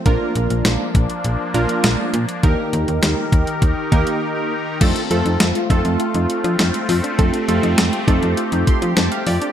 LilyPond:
<<
  \new Staff \with { instrumentName = "Synth keys" } { \time 4/4 \key f \mixolydian \tempo 4 = 101 << { r1 | r1 | r1 | r2 r8 c'''8 a''16 f''16 d''8 | } \\ { <bes d' f' bes'>4. r4 <bes d' f' bes'>4 r8 | <bes ees' g' bes'>4. r4 <bes ees' g' bes'>4 r8 | <a c' f' a'>8 <a c' f' a'>8 r8 <a c' f' a'>4. r4 | <a c' f' a'>8 <a c' f' a'>8 r8 <a c' f' a'>4. r4 | } >> }
  \new Staff \with { instrumentName = "Synth pluck" } { \time 4/4 \key f \mixolydian r1 | r1 | d'8 c'16 ees'8 f'16 ees'8 f'16 ees'8 d'16 c'8 f'16 d'16 | d'8 c'16 ees'8 f'16 ees'8 f'16 ees'8 d'16 c'8 f'16 d'16 | }
  \new Staff \with { instrumentName = "Analog synth pad" } { \time 4/4 \key f \mixolydian << { d'1 | <ees bes'>1 | f'1 | g'1 | } \\ { <f bes>1 | <ees' g'>1 | <a c'>1~ | <a c'>1 | } >> }
  \new Staff \with { instrumentName = "FM bass" } { \clef bass \time 4/4 \key f \mixolydian bes,,16 r16 bes,,16 bes,,16 bes,,16 r16 bes,,16 r16 bes,,16 r16 bes,,16 r16 bes,,16 r16 bes,16 r16 | ees,16 r16 ees,16 ees,16 ees,16 r16 ees,16 r16 ees,16 r16 ees,16 r4 r16 | f,16 r16 f,16 f,16 f,16 r16 f,16 f,16 r16 f,16 r16 f16 f,16 r16 f,16 r16 | f,16 r16 f,16 f,16 f,16 r16 f,16 f,16 r16 f,16 r16 f16 f,16 r16 f,16 r16 | }
  \new DrumStaff \with { instrumentName = "Drums" } \drummode { \time 4/4 <hh bd>8 hh16 hh16 <hh sn>8 <hh bd>16 hh16 hh8 hh16 hh16 <hh sn>8 hh16 hh16 | <hh bd>8 hh16 hh16 <hh sn>8 <hh bd>16 hh16 <hh bd>8 <hh bd>16 hh16 r4 | <cymc hh bd>16 hh16 hh16 hh16 <hh sn>16 hh16 <hh bd>16 hh16 hh16 hh16 hh16 hh16 <hh sn>16 hh16 hho16 hh16 | <hh bd>16 hh16 hh16 hh16 <hh sn>16 hh16 <hh bd>16 hh16 hh16 hh16 <hh bd>16 hh16 <hh sn>16 hh16 hho16 hh16 | }
>>